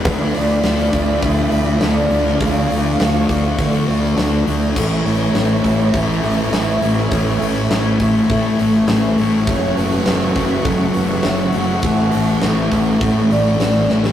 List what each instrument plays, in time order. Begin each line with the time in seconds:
Already playing: clean electric guitar D4, analog synth pad D5
0.05 fingered electric bass D2, distorted electric guitar D3 A3 D4, clean electric guitar F3, analog synth pad A3 F4 B5, overdriven electric guitar F4, soft synth lead B4, kick, open hi-hat
0.34 fingered electric bass D2, clean electric guitar B3, soft synth lead D5, open hi-hat
0.63 fingered electric bass D2, distorted electric guitar D3 A3 D4, clean electric guitar F3, snare, open hi-hat
0.93 fingered electric bass D2, distorted electric guitar A3 D4, clean electric guitar B3, kick, open hi-hat
1.22 fingered electric bass D2, distorted electric guitar D3 A3 D4, clean electric guitar F3, soft synth lead E5, kick, open hi-hat
1.52 fingered electric bass D2, clean electric guitar B3, open hi-hat
1.80 fingered electric bass D2, distorted electric guitar D3 A3 D4, clean electric guitar A4, soft synth lead D5, snare, open hi-hat
2.10 fingered electric bass D2, distorted electric guitar A3 D4, clean electric guitar D4, open hi-hat
2.26 snare
2.39 fingered electric bass D2, distorted electric guitar D3 A3 D4, clean electric guitar F3, soft synth lead F5, analog synth pad C#6, kick, open hi-hat
2.70 fingered electric bass D2, clean electric guitar B3, open hi-hat
2.98 fingered electric bass D2, distorted electric guitar D3 A3 D4, clean electric guitar F3, snare, open hi-hat
3.29 fingered electric bass D2, distorted electric guitar A3 D4, clean electric guitar B3, kick, open hi-hat
3.58 fingered electric bass D3, distorted electric guitar D3 A3 D4, clean electric guitar F3, kick, open hi-hat
3.88 fingered electric bass D2, clean electric guitar B3, open hi-hat
4.17 fingered electric bass D2, distorted electric guitar D3 A3 D4, clean electric guitar A4, snare, open hi-hat
4.47 fingered electric bass D2, distorted electric guitar A3 D4, clean electric guitar D4, open hi-hat
4.76 fingered electric bass A1, distorted electric guitar A2 E3 A3, clean electric guitar E3, overdriven electric guitar C#4 E4, soft synth lead A4, analog synth pad E5 G#5 C#6, kick, crash
5.05 fingered electric bass A1, clean electric guitar A3, soft synth lead C#5, open hi-hat
5.34 fingered electric bass A1, distorted electric guitar A2 E3 A3, clean electric guitar E3, snare, open hi-hat
5.64 fingered electric bass A1, distorted electric guitar E3 A3, clean electric guitar A3, kick, open hi-hat
5.92 fingered electric bass A1, distorted electric guitar A2 E3 A3, clean electric guitar E3, soft synth lead E5, kick, open hi-hat
6.23 fingered electric bass A1, clean electric guitar A3, open hi-hat
6.50 fingered electric bass A1, distorted electric guitar A2 E3, clean electric guitar G#4, soft synth lead E5, snare, open hi-hat
6.55 distorted electric guitar A3
6.82 fingered electric bass A1, distorted electric guitar E3 A3, clean electric guitar C#4, open hi-hat
6.98 snare
7.08 fingered electric bass A1, distorted electric guitar A2, soft synth lead C#5, kick, open hi-hat
7.12 clean electric guitar E3, distorted electric guitar E3 A3
7.41 fingered electric bass A1, clean electric guitar A3, open hi-hat
7.71 fingered electric bass A1, distorted electric guitar A2 E3 A3, clean electric guitar E3, snare, open hi-hat
8.00 fingered electric bass A1, distorted electric guitar E3 A3, clean electric guitar A3, kick, open hi-hat
8.30 fingered electric bass A2, distorted electric guitar A2 E3 A3, clean electric guitar E3, kick, open hi-hat
8.59 fingered electric bass A1, clean electric guitar A3, open hi-hat
8.88 fingered electric bass A1, distorted electric guitar A2 E3 A3, clean electric guitar G#4, snare, open hi-hat
9.18 fingered electric bass A1, distorted electric guitar E3 A3, clean electric guitar C#4, open hi-hat
9.47 fingered electric bass F#1, distorted electric guitar F#2 C#3 F#3, clean electric guitar E3, overdriven electric guitar A3 C#4 F#4, soft synth lead C#5, analog synth pad E5 F#5, kick, open hi-hat
9.76 fingered electric bass F#1, clean electric guitar A3, soft synth lead B4, open hi-hat
10.06 fingered electric bass F#1, distorted electric guitar F#2 C#3 F#3, clean electric guitar E3, snare, open hi-hat
10.35 fingered electric bass F#1, distorted electric guitar C#3 F#3, kick, open hi-hat
10.64 fingered electric bass F#1, distorted electric guitar F#2 C#3 F#3, clean electric guitar E3, soft synth lead A4, kick, open hi-hat
10.94 fingered electric bass F#1, clean electric guitar A3, soft synth lead B4, open hi-hat
11.23 fingered electric bass F#1, distorted electric guitar F#2 C#3 F#3, clean electric guitar F#4, soft synth lead C#5, snare, open hi-hat
11.52 fingered electric bass F#1, distorted electric guitar C#3 F#3, clean electric guitar C#4, soft synth lead F#5, open hi-hat
11.82 fingered electric bass A1, distorted electric guitar A2 E3 A3, clean electric guitar E3, overdriven electric guitar C#4 A4, kick, open hi-hat
12.12 fingered electric bass A1, clean electric guitar A3, open hi-hat
12.41 fingered electric bass A1, distorted electric guitar A2 E3 A3, clean electric guitar E3, snare, open hi-hat
12.71 fingered electric bass A1, distorted electric guitar E3 A3, clean electric guitar A3, kick, open hi-hat
12.99 distorted electric guitar A2 E3 A3, fingered electric bass A2, clean electric guitar E3, kick, open hi-hat
13.31 fingered electric bass A1, clean electric guitar A3, soft synth lead D5, open hi-hat
13.60 fingered electric bass A1, distorted electric guitar A2 E3 A3, clean electric guitar F#4, snare, open hi-hat
13.75 snare
13.88 fingered electric bass A1, distorted electric guitar E3 A3, clean electric guitar C#4, soft synth lead C#5, snare
14.04 snare